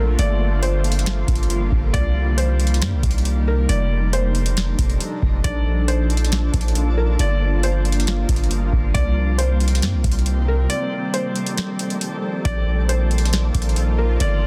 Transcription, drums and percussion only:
0.19 closed hi-hat
0.63 closed hi-hat
0.84 closed hi-hat
0.92 closed hi-hat
0.99 closed hi-hat
1.06 snare, closed hi-hat
1.28 kick, closed hi-hat
1.35 closed hi-hat
1.43 closed hi-hat
1.50 closed hi-hat
1.72 kick
1.94 kick, closed hi-hat
2.38 closed hi-hat
2.60 closed hi-hat
2.67 closed hi-hat
2.74 closed hi-hat
2.82 snare, closed hi-hat
3.03 kick, closed hi-hat
3.11 closed hi-hat
3.18 closed hi-hat
3.25 closed hi-hat
3.69 closed hi-hat
4.13 closed hi-hat
4.35 closed hi-hat
4.46 closed hi-hat
4.57 snare, closed hi-hat
4.79 kick, closed hi-hat
4.90 closed hi-hat
5.00 closed hi-hat
5.22 kick
5.44 kick, closed hi-hat
5.88 closed hi-hat
6.10 closed hi-hat
6.17 closed hi-hat
6.25 closed hi-hat
6.32 snare, closed hi-hat
6.54 kick, closed hi-hat
6.61 closed hi-hat
6.68 closed hi-hat
6.75 closed hi-hat
7.19 closed hi-hat
7.63 closed hi-hat
7.85 closed hi-hat
7.92 closed hi-hat
8.00 closed hi-hat
8.07 snare, closed hi-hat
8.29 kick, closed hi-hat
8.36 closed hi-hat
8.44 closed hi-hat
8.51 closed hi-hat
8.73 kick
8.95 kick, closed hi-hat
9.39 closed hi-hat
9.60 closed hi-hat
9.68 closed hi-hat
9.75 closed hi-hat
9.82 snare, closed hi-hat
10.04 kick, closed hi-hat
10.12 closed hi-hat
10.19 closed hi-hat
10.26 closed hi-hat
10.70 closed hi-hat
11.14 closed hi-hat
11.36 closed hi-hat
11.47 closed hi-hat
11.58 snare, closed hi-hat
11.79 closed hi-hat
11.90 closed hi-hat
12.01 closed hi-hat
12.45 kick, closed hi-hat
12.89 closed hi-hat
13.11 closed hi-hat
13.18 closed hi-hat
13.25 closed hi-hat
13.33 snare, closed hi-hat
13.54 kick, closed hi-hat
13.62 closed hi-hat
13.69 closed hi-hat
13.76 closed hi-hat
14.20 closed hi-hat

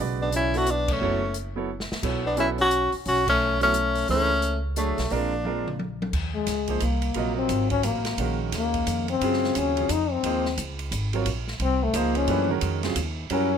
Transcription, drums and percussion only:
0.32 closed hi-hat
0.54 open hi-hat
0.66 closed hi-hat
0.88 kick, crash
1.34 closed hi-hat
1.80 snare
1.92 snare
2.03 kick, crash
2.37 closed hi-hat
2.58 open hi-hat
2.71 closed hi-hat
2.92 open hi-hat
3.05 open hi-hat
3.27 kick, crash
3.61 open hi-hat
3.74 closed hi-hat
3.95 open hi-hat
4.08 open hi-hat
4.42 closed hi-hat
4.76 closed hi-hat
4.98 snare, open hi-hat
5.10 open hi-hat
5.45 high tom
5.68 mid tom
5.79 high tom
6.02 high tom
6.13 kick, crash
6.47 snare, hi-hat pedal, ride
6.68 kick, ride
6.80 hi-hat pedal, ride
7.02 ride
7.14 ride
7.49 hi-hat pedal, ride
7.70 kick, ride
7.83 hi-hat pedal, ride
8.05 snare, ride
8.18 ride
8.52 snare, hi-hat pedal, ride
8.74 kick, ride
8.87 hi-hat pedal, ride
9.08 ride
9.21 ride
9.33 snare
9.44 snare
9.55 hi-hat pedal, ride
9.77 ride
9.89 hi-hat pedal, ride
10.24 ride
10.45 snare
10.58 hi-hat pedal, ride
10.79 ride
10.92 hi-hat pedal, ride
11.13 ride
11.26 ride
11.48 snare
11.60 ride
11.94 hi-hat pedal, ride
12.15 ride
12.28 ride
12.61 hi-hat pedal, ride
12.83 snare, ride
12.96 hi-hat pedal, ride
13.30 ride

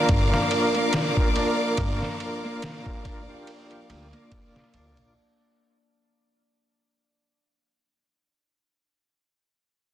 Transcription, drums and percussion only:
0.09 kick, ride
0.34 snare
0.51 ride
0.75 ride
0.93 snare, ride
1.17 kick
1.36 ride
1.77 kick, ride
2.02 snare
2.20 ride
2.62 snare, ride
2.86 kick
3.05 kick, ride
3.47 ride
3.71 ride
3.90 ride
4.13 ride
4.32 kick, ride
4.56 snare
4.74 ride
4.97 ride

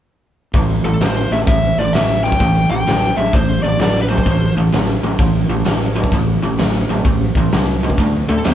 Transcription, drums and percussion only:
0.54 kick, open hi-hat
1.00 snare, open hi-hat
1.47 kick, open hi-hat
1.94 snare, open hi-hat
2.32 kick
2.40 kick, open hi-hat
2.87 snare, open hi-hat
3.33 kick, open hi-hat
3.80 snare, open hi-hat
4.18 kick
4.26 kick, open hi-hat
4.73 snare, open hi-hat
5.19 kick, open hi-hat
5.65 snare, open hi-hat
6.04 kick
6.12 kick, open hi-hat
6.58 snare, open hi-hat
7.05 kick, open hi-hat
7.35 kick
7.51 snare, open hi-hat
7.90 kick
7.98 kick, open hi-hat
8.44 snare, open hi-hat

